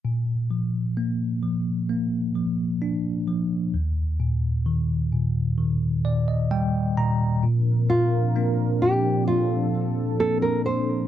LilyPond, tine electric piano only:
<<
  \new Staff \with { instrumentName = "Tine electric piano" } { \time 4/4 \key bes \major \tempo 4 = 65 r1 | r2 r8 d''16 ees''16 g''8 bes''8 | r1 | }
  \new Staff \with { instrumentName = "Tine electric piano" } { \clef bass \time 4/4 \key bes \major bes,8 f8 bes8 f8 bes8 f8 d'8 f8 | ees,8 bes,8 ees8 bes,8 ees8 bes,8 g8 bes,8 | bes,4 <bes c' d'>4 r4 <bes c' d'>4 | }
>>